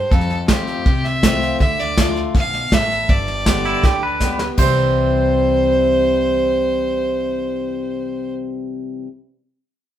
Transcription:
Already playing: G2 C5
0.11 F2 A4, kick, snare
0.21 snare
0.30 snare
0.48 F3 A3 C4 F4 G4, kick, snare, hi-hat pedal
0.67 snare
0.86 C2 C3, kick, snare
1.05 E5, snare
1.22 F3 A3 C4 F4, kick, snare, hi-hat pedal
1.42 snare
1.60 D2 D3 E5, kick, snare
1.79 D5, snare
1.97 D3 A3 D4 F4, kick, snare, hi-hat pedal
2.16 snare
2.35 B1 B2 F5, kick, snare
2.44 snare
2.53 snare
2.72 A1 A2 E5, kick, snare, hi-hat pedal
2.91 snare
3.09 G1 G2 D5, kick, snare
3.28 snare
3.46 D3 G3 B3 G4, kick, snare, hi-hat pedal
3.65 E4, snare
3.83 D2 D3 G4, kick, snare
4.03 B4
4.20 D3 G3 B3 G4, kick, snare, hi-hat pedal
4.39 B3 G4, snare
4.57 C2 C3 E3 G3 C4 C5, kick, crash
4.62 E4

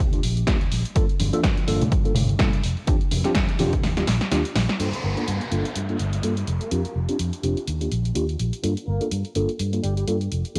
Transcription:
0.00 D#2, kick
0.13 A#3 D4 F4 G4, closed hi-hat
0.23 A#1, open hi-hat, shaker
0.37 closed hi-hat, shaker
0.47 A#3 D4 F4 G4, kick, snare, closed hi-hat
0.61 closed hi-hat
0.71 A#1, open hi-hat
0.85 closed hi-hat, shaker
0.95 G2 A#3 D4 F4 A4, kick, closed hi-hat
1.09 closed hi-hat
1.20 G1, open hi-hat, high conga, shaker
1.33 A#3 D4 F4 A4, muted fingered electric bass stroke, closed hi-hat, shaker
1.43 G2, kick, snare, closed hi-hat, high conga, shaker
1.57 closed hi-hat
1.67 G1 A#3 D4 F4 A4, open hi-hat, shaker
1.81 closed hi-hat, low conga, shaker
1.91 G2, kick, closed hi-hat, shaker
2.05 A#3 D4 F4 A4, closed hi-hat
2.15 G1, open hi-hat, low conga, shaker
2.29 closed hi-hat, shaker
2.39 G2 A#3 D4 F4 A4, kick, snare, closed hi-hat, low conga, shaker
2.53 closed hi-hat
2.64 F1, open hi-hat, shaker
2.77 closed hi-hat, shaker
2.87 F2 C4 D4 F4 G4, kick, closed hi-hat
3.01 muted fingered electric bass stroke, closed hi-hat
3.11 F1, open hi-hat, high conga, shaker
3.24 C4 D4 F4 G4, snare, closed hi-hat, shaker
3.35 F2, kick, snare, closed hi-hat, high conga, shaker
3.49 closed hi-hat
3.59 F1 C4 D4 F4 G4, open hi-hat, high conga, shaker
3.73 kick, closed hi-hat, low conga, shaker
3.84 D#2, snare, open hi-hat, shaker
3.97 A#3 D4 F4 G4, snare, closed hi-hat
4.07 A#1, snare, open hi-hat, shaker
4.21 snare, closed hi-hat, shaker
4.31 D#2 A#3 D4 F4 G4, snare, closed hi-hat
4.45 closed hi-hat
4.55 A#1, snare, open hi-hat, shaker
4.69 snare, closed hi-hat
4.79 G2 A#3 D4 F4 A4, closed hi-hat, downlifter
4.93 closed hi-hat
5.04 G1 A#3 A#4
5.17 A#3 D4 F4 A4, closed hi-hat
5.28 G2, closed hi-hat
5.41 closed hi-hat
5.51 G1 A#3 D4 F4 A4, closed hi-hat
5.65 closed hi-hat
5.75 G2, closed hi-hat
5.89 A#3 D4 F4 A4, closed hi-hat
5.99 G1, closed hi-hat
6.13 closed hi-hat
6.23 G2 A#3 D4 F4 A4, closed hi-hat
6.37 closed hi-hat
6.47 F1, closed hi-hat
6.61 A#3 A#4, closed hi-hat
6.71 F2 C4 D4 F4 G4, closed hi-hat
6.85 muted fingered electric bass stroke, closed hi-hat
6.96 F1
7.09 C4 D4 F4 G4, muted fingered electric bass stroke, closed hi-hat
7.19 F2, closed hi-hat
7.33 closed hi-hat
7.43 F1 C4 D4 F4 G4, closed hi-hat
7.57 closed hi-hat
7.67 D#2, closed hi-hat
7.81 A#3 D4 F4 G4, closed hi-hat
7.92 A#1, closed hi-hat
8.05 closed hi-hat
8.15 D#2 A#3 D4 F4 G4, closed hi-hat
8.29 closed hi-hat
8.39 A#1, closed hi-hat
8.53 closed hi-hat
8.63 G2 A#3 D4 F4 A4, closed hi-hat
8.77 closed hi-hat
8.87 G1 A#3 A#4
9.01 A#3 D4 F4 A4, muted fingered electric bass stroke, closed hi-hat
9.12 G2, closed hi-hat
9.25 closed hi-hat
9.35 G1 A#3 D4 F4 A4, closed hi-hat
9.49 closed hi-hat
9.59 G2, closed hi-hat
9.73 A#3 D4 F4 A4, closed hi-hat
9.83 G1 G3 G4, closed hi-hat
9.97 G3 G4, closed hi-hat
10.07 G2 A#3 D4 F4 A4, closed hi-hat
10.21 closed hi-hat
10.32 F1, closed hi-hat
10.45 closed hi-hat
10.55 C4 D4 F4, closed hi-hat

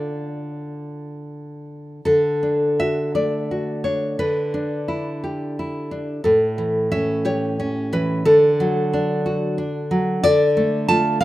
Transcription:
Already playing: D3 D4 F4 D5
2.05 D3 A4
2.43 D4
2.80 F#4 E5
3.15 A3 D5
3.51 F#4
3.84 D4 C#5
4.19 D3 B4
4.54 D4
4.88 E4
5.24 G4
5.59 E4
5.91 D4
6.24 A2 A4
6.58 E3
6.92 C#4 E5
7.25 G4 C#5
7.60 C#4
7.93 E3 B4
8.25 D3 A4
8.60 F#3
8.93 D4
9.26 F#4
9.58 D4
9.91 F#3
10.24 D3 D5
10.57 A3
10.88 A3 F4 A5
11.21 C#3 F5

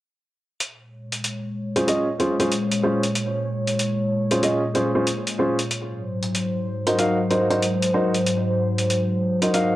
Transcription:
0.60 A#2 G#3 C#5, closed hi-hat
1.12 closed hi-hat
1.24 closed hi-hat
1.76 C#4 F4 G#4 C5, closed hi-hat
1.88 C#4 F4 G#4 D#5, closed hi-hat
2.20 C#4 F4 G#4 C5, closed hi-hat
2.40 C#4 F4 G#4 C5, closed hi-hat
2.52 closed hi-hat
2.72 closed hi-hat
2.83 C#4 F4 G#4 C5
3.03 closed hi-hat
3.15 closed hi-hat
3.67 closed hi-hat
3.79 closed hi-hat
4.31 C#4 F4 G#4 C5, closed hi-hat
4.43 C#4 F4 G#4 D#5, closed hi-hat
4.75 C#4 F4 G#4 C5, closed hi-hat
4.95 C#4 F4 G#4 C5
5.07 closed hi-hat
5.27 closed hi-hat
5.39 C#4 F4 G#4 C5
5.59 closed hi-hat
5.71 G#2 F#3 C5, closed hi-hat
6.23 closed hi-hat
6.35 closed hi-hat
6.87 D#4 F#4 A#4 C5, closed hi-hat
6.99 D#4 F#4 A#4 F5, closed hi-hat
7.30 D#4 F#4 A#4 C5, closed hi-hat
7.50 D#4 F#4 A#4 C5, closed hi-hat
7.62 closed hi-hat
7.82 closed hi-hat
7.94 D#4 F#4 A#4 C5
8.14 closed hi-hat
8.26 closed hi-hat
8.78 closed hi-hat
8.90 closed hi-hat
9.42 D#4 F#4 A#4 C5, closed hi-hat
9.54 D#4 F#4 A#4 F5, closed hi-hat

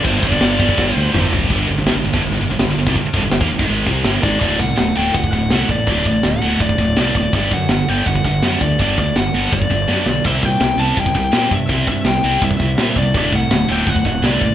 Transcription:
0.04 G1 G2 D3 G3 C5, kick, crash
0.23 G1 D5, kick, crash
0.32 kick
0.41 G1, snare, crash
0.60 G2 D3 G3, kick, crash
0.69 kick
0.78 G1, kick, snare
0.96 D2 C5
1.13 G1 G2 D3 G3, mid tom
1.33 G1, floor tom
1.50 G1 G2 D3 G3, kick, crash
1.69 G1 G2 D3, crash
1.77 G1 G2 D3
1.86 G#1 G#2 D#3, snare, crash
1.95 G1 G2 D3
2.04 G1 G2 D3, crash
2.13 G1 G2 D3, kick
2.23 G1 G2 D3, crash
2.31 G1 G2 D3
2.41 G1 G2 D3, crash
2.50 G1 G2 D3
2.59 G1 G2 D3, snare, crash
2.69 G1 G2 D3
2.77 G1 G2 D3, crash
2.87 C2 C3 G3, kick
2.96 G1 G2 D3, kick, crash
3.04 muted fingered electric bass stroke, muted distorted electric guitar stroke
3.13 G1 G2 D3, kick, crash
3.23 G1 G2 D3
3.31 G1 G2 D3, snare, crash
3.40 D#2 D#3 A#3, kick
3.50 G1 G2 D3, crash
3.59 G#1 G#2 D#3, kick
3.68 G#1 G#2 D#3 G#3, crash
3.86 C2 C3 G3 C4, kick, crash
4.05 G1 G2 D3 G3, snare, crash
4.22 G#1 G#2 D#3 G#3 D5, kick, crash
4.40 D1 D2 A2 D3 D5, kick, crash
4.59 C2 D2 A2 F#5, kick
4.76 D1 D2 A2 F#5, snare, ride bell
4.95 D1 D2 A2 D3 G5
5.14 D1 D2 A2 F#5, kick, ride bell
5.24 kick
5.32 D1 D2 A2 F#5, kick
5.50 C2 D2 A2 D3, snare, ride bell
5.69 A1 D2 A2 D5, kick
5.86 D1 D2 A2 D3, kick, ride bell
6.05 A1 D2 A2 D5, kick
6.23 D1 D2 A2 F#5, snare, ride bell
6.42 D1 D2 A2 D3
6.60 D1 D2 A2 D5, kick, ride bell
6.69 kick
6.78 D1 D2 A2, kick
6.96 C2 D2 A2 D3 D5, snare, ride bell
7.15 D1 D2 A2 D5, kick
7.33 G1 G2 D3 G3 D5, kick, ride bell
7.51 F#2 G2 D3 F#5, kick
7.69 G1 G2 D3 F#5, snare, ride bell
7.88 G1 G2 D3 G3 G5
8.06 G1 G2 D3 F#5, kick, ride bell
8.15 kick
8.24 G1 G2 D3 F#5, kick
8.42 F#2 G2 D3 G3, snare, ride bell
8.61 D2 G2 D3 D5, kick
8.79 G1 G2 D3 G3 D5, kick, ride bell
8.98 D2 G2 D3 D5, kick
9.16 G1 G2 D3 F#5, snare, ride bell
9.34 G1 G2 D3 G3
9.52 G1 G2 D3 D5, kick, ride bell
9.62 kick
9.70 G1 G2 D3, kick
9.88 F#2 G2 D3 G3, snare
10.06 B1 G2 D3 D5, snare
10.24 C2 C3 G3 C4 E5, kick, crash, ride bell
10.43 A#2 C3 G3 G5, kick
10.60 C2 C3 G3 G5, snare, ride bell
10.77 C2 C3 G3 C4 A5
10.97 C2 C3 G3 G5, kick, ride bell
11.06 kick
11.14 C2 C3 G3 G5, kick
11.32 A#2 C3 G3 C4, snare, ride bell
11.50 G2 C3 G3 E5, kick
11.69 C2 C3 G3 C4, kick, ride bell
11.87 G2 C3 G3 E5, kick
12.04 C2 C3 G3 G5, snare, ride bell
12.23 C2 C3 G3 C4
12.42 C2 C3 G3 E5, kick, ride bell
12.51 kick
12.60 C2 C3 G3, kick
12.78 A#2 C3 G3 C4, snare, ride bell
12.96 C2 C3 G3 D5, kick
13.14 D1 D2 A2 D3, kick, ride bell
13.18 D5
13.32 C2 D2 A2 F#5, kick
13.50 D1 D2 A2 F#5, snare, ride bell
13.68 D1 D2 A2 D3 G5
13.87 D1 D2 A2 F#5, kick, ride bell
13.96 kick
14.05 D1 D2 A2, kick
14.22 C2 D2 A2 D3 D5, snare, ride bell
14.41 A1 D2 A2, kick

